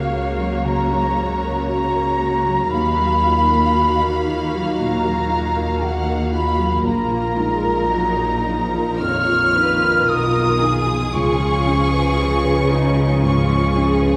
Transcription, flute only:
Already playing: F5
0.65 A#5
1.68 A#5
2.71 B5
4.80 A#5
5.84 F#5
6.34 B5
6.84 A#5
9.00 F6
10.09 D#6
11.12 C#6
13.22 C#6

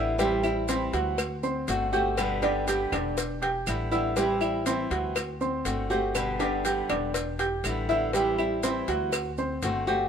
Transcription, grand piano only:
Already playing: E4 E5 E6
0.19 G3 G4 G5
0.69 C4 C5 C6
0.93 F#4 F#5
1.43 C4 C5 C6
1.92 G4 G5 G6
2.42 D4 D5 D6
2.68 G4 G5 G6
2.92 D4 D5 D6
3.42 G4 G5 G6
3.92 E4 E5 E6
4.16 G3 G4 G5
4.66 C4 C5 C6
4.91 F#4 F#5
5.41 C4 C5 C6
5.90 G4 G5 G6
6.39 D4 D5 D6
6.65 G4 G5 G6
6.90 D4 D5 D6
7.39 G4 G5 G6
7.89 E4 E5 E6
8.14 G3 G4 G5
8.63 C4 C5 C6
8.89 F#4 F#5
9.38 C4 C5 C6
9.87 G4 G5 G6

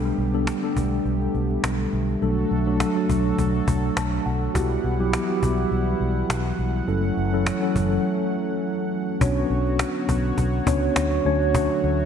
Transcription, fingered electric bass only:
Already playing: B1
0.18 B1
0.76 B1
1.05 B1
1.34 B1
1.64 B1
1.93 B1
2.22 B1
2.51 B1
3.09 B1
3.38 B1
3.67 B1
3.97 B1
4.26 B1
4.55 B1
4.84 B1
5.43 B1
5.71 B1
6.00 B1
6.29 B1
6.59 B1
6.88 F#1
7.17 F#1
7.76 F#1
9.21 B1
9.50 B1
10.09 B1
10.38 B1
10.67 C#2
10.96 D2
11.25 D2
11.83 D2

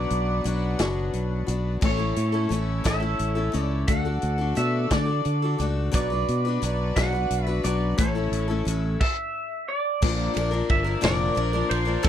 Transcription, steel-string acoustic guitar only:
Already playing: B2 F#3 B3 D4 F#4
0.44 F#3 B3 D4 F#4
0.79 B2 F#3 B3 D4 F#4
1.47 B3 D4 F#4
1.81 A2 E3 A3 C#4 E4 A4
1.97 A3 C#4 E4 A4
2.32 A3 C#4 E4 A4
2.49 A3 C#4 E4 A4
2.84 A2 E3 A3 C#4 E4 A4
3.00 A3 C#4 E4 A4
3.35 A3 C#4 E4 A4
3.52 A3 C#4 E4 A4
3.88 D3 A3 D4 F#4 A4
4.05 D4 F#4 A4
4.38 D4 F#4 A4
4.55 A3 D4 F#4 A4
4.91 D3 A3 D4 F#4 A4
5.06 D4 F#4 A4
5.42 D4 F#4 A4
5.58 A3 D4 F#4 A4
5.92 B2 F#3 D4 F#4 B4
6.10 D4 F#4 B4
6.45 D4 F#4 B4
6.62 F#3 D4 F#4 B4
6.96 B2 F#3 D4 F#4 B4
7.12 D4 F#4 B4
7.47 D4 F#4 B4
7.64 F#3 D4 F#4 B4
7.98 A2 E3 A3 C#4 E4 A4
8.15 A3 C#4 E4 A4
8.48 A3 C#4 E4 A4
8.65 A3 C#4 E4 A4
10.02 A#2 D3 F3 A#3 D4 A#4
10.34 F3 A#3 D4 A#4
10.51 F3 A#3 D4 A#4
10.84 F3 A#3 D4 A#4
11.01 A#2 D3 F3 A#3 D4 A#4
11.35 F3 A#3 D4 A#4
11.53 F3 A#3 D4 A#4
11.85 F3 A#3 D4 A#4
12.03 A#2 D3 F3 A#3 D4 A#4

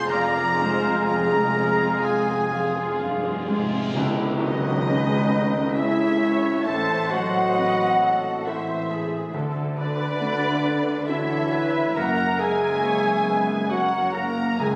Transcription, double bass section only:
0.11 F1
1.07 F1
2.04 F1
2.99 F1
3.94 C#2
6.67 A1
9.34 D2
11.97 F#1
14.60 C#2

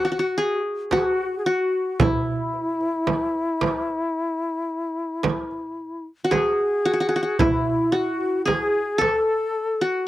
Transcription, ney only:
Already playing: F#4
0.91 F#4
0.99 G#4
1.05 F#4
1.39 G#4
1.45 F#4
2.00 E4
6.30 G#4
7.39 E4
7.92 F#4 G#4
8.45 G#4
9.00 A4
9.82 F#4

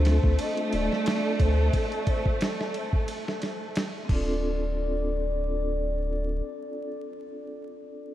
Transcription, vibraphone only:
Already playing: C4 D4 F4 A4
0.02 A3 C4
0.07 F4 A4
4.05 C4 D4
4.12 F4 A4

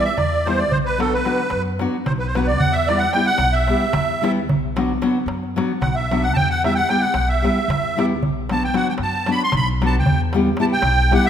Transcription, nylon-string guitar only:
0.46 E3 G3 B3 E4
0.98 F#3 B3 D4 F#4
1.24 F#3 B3 D4 F#4
1.79 F#3 B3 D4 F#4
2.35 F#3 B3 D4 F#4
2.89 G3 B3 E4 G4
3.15 G3 B3 E4 G4
3.69 G3 B3 E4 G4
4.22 G3 B3 E4 G4
4.76 F#3 B3 D4 F#4
5.02 F#3 B3 D4 F#4
5.56 F#3 B3 D4 F#4
6.11 F#3 B3 D4 F#4
6.64 G3 B3 E4 G4
6.89 G3 B3 E4 G4
7.42 G3 B3 E4 G4
7.96 G3 B3 E4 G4
8.50 F#3 B3 D4 F#4
8.74 F#3 B3 D4 F#4
9.27 F#3 B3 D4 F#4
9.81 F#3 B3 D4 F#4
10.34 G3 B3 E4 G4
10.59 G3 B3 E4 G4
11.11 G3 B3 E4 G4

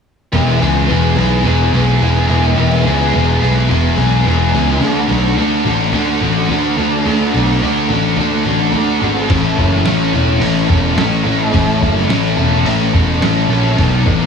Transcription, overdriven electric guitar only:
0.32 E3 G#3 B3 E4 G#4
0.60 B3 E4 G#4
0.88 G#3 B3 E4 G#4
1.17 B3 E4 G#4
1.44 E3 G#3 B3 E4 G#4
1.72 B3 E4 G#4
2.00 G#3 B3 E4 G#4
2.28 B3 E4 G#4
2.55 E3 G#3 B3 E4 G#4
2.84 B3 E4 G#4
3.12 G#3 B3 E4 G#4
3.41 B3 E4 G#4
3.68 E3 G#3 B3 E4 G#4
3.96 B3 E4 G#4
4.24 G#3 B3 E4 G#4
4.52 B3 E4 G#4
4.80 D3 A3 D4 F#4 A4
5.09 D4 F#4 A4
5.36 A3 D4 F#4 A4
5.65 D4 F#4 A4
5.93 D3 A3 D4 F#4 A4
6.21 D4 F#4 A4
6.50 A3 D4 F#4 A4
6.77 D4 F#4 A4
7.06 D3 A3 D4 F#4 A4
7.34 D4 F#4 A4
7.61 A3 D4 F#4 A4
7.89 D4 F#4 A4
8.16 D3 A3 D4 F#4 A4
8.45 D4 F#4 A4
8.73 A3 D4 F#4 A4
9.00 D4 F#4 A4
9.27 A2 E3 A3 C#4 E4 A4
9.57 A3 C#4 E4 A4
9.84 A3 C#4 E4 A4
10.13 A3 C#4 E4 A4
10.40 A2 E3 A3 C#4 E4 A4
10.67 A3 C#4 E4 A4
10.95 A3 C#4 E4 A4
11.23 A3 C#4 E4 A4
11.52 A2 E3 A3 C#4 E4 A4
11.81 A3 C#4 E4 A4
12.09 A3 C#4 E4 A4
12.37 A3 C#4 E4 A4
12.65 A2 E3 A3 C#4 E4 A4
12.93 A3 C#4 E4 A4
13.22 A3 C#4 E4 A4
13.50 A3 C#4 E4 A4
13.77 B2 D#3 F#3 B3 D#4
13.81 A4
14.06 F#3 B3 D#4 A4

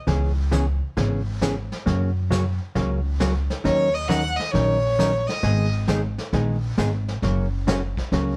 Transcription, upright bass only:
0.07 C#2
0.97 G#1
1.87 F#2
2.76 C#2
3.65 D#2
4.54 A#1
5.43 G#1
6.33 A#1
6.78 G#1
7.22 F#1
8.12 C#2

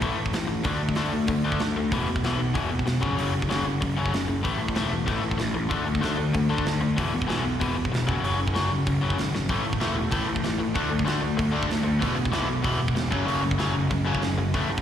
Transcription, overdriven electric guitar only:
0.02 A2 E3 A3
0.17 A2 E3
0.34 A2 E3
0.48 A2 E3
0.64 D3 A3 D4
0.79 D3 A3
0.97 D3 A3 D4
1.12 D3 A3
1.28 D3 A3
1.44 D3 A3 D4
1.61 D3 A3
1.76 D3 A3
1.92 E2 B2 E3
2.08 E2 B2
2.24 E2 B2 E3
2.40 E2 B2
2.54 E2 B2 E3
2.70 E2 B2
2.86 E2 B2
3.01 F#2 C#3 F#3
3.16 F#2 C#3 F#3
3.34 F#2 C#3
3.49 F#2 C#3 F#3
3.66 F#2 C#3
3.81 F#2 C#3
3.97 F#2 C#3 F#3
4.12 F#2 C#3
4.28 F#2 C#3
4.43 A2 E3 A3
4.59 A2 E3
4.76 A2 E3 A3
4.91 A2 E3
5.06 A2 E3 A3
5.23 A2 E3
5.38 A2 E3
5.54 A2 E3
5.69 D3 A3 D4
5.86 D3 A3
6.01 D3 A3 D4
6.17 D3 A3
6.34 D3 A3
6.50 D3 A3 D4
6.64 D3 A3
6.81 D3 A3
6.97 E2 B2 E3
7.13 E2 B2
7.27 E2 B2 E3
7.43 E2 B2
7.60 E2 B2 E3
7.76 E2 B2
7.92 E2 B2
8.07 F#2 C#3 F#3
8.24 F#2 C#3 F#3
8.39 F#2 C#3
8.54 F#2 C#3 F#3
8.71 F#2 C#3
8.87 F#2 C#3
9.01 F#2 C#3 F#3
9.19 F#2 C#3
9.34 F#2 C#3
9.49 A2 E3 A3
9.65 A2 E3
9.81 A2 E3 A3
9.97 A2 E3
10.11 A2 E3 A3
10.28 A2 E3
10.44 A2 E3
10.58 A2 E3
10.75 D3 A3 D4
10.90 D3 A3
11.05 D3 A3 D4
11.21 D3 A3
11.37 D3 A3
11.52 D3 A3 D4
11.68 D3 A3
11.83 D3 A3
12.00 E2 B2 E3
12.16 E2 B2
12.32 E2 B2 E3
12.47 E2 B2
12.63 E2 B2 E3
12.80 E2 B2
12.95 E2 B2
13.11 F#2 C#3 F#3
13.26 F#2 C#3 F#3
13.43 F#2 C#3
13.58 F#2 C#3 F#3
13.74 F#2 C#3
13.91 F#2 C#3
14.05 F#2 C#3 F#3
14.23 F#2 C#3
14.38 F#2 C#3
14.55 A2 E3 A3
14.70 A2 E3

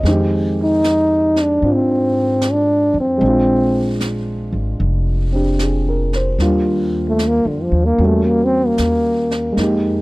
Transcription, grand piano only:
Already playing: D#5
0.05 D#3 G#3 C4
0.09 G4
1.63 C4 D4 F4
3.18 G#3 C4
3.25 D4 F4
5.32 C4 D4 G4
5.63 G#4
5.89 A#4
6.16 C5
6.40 G3 A#3 D4 F4
7.99 G3 A#3 C#4 F#4
9.52 G#3 A#3
9.59 D#4 G4

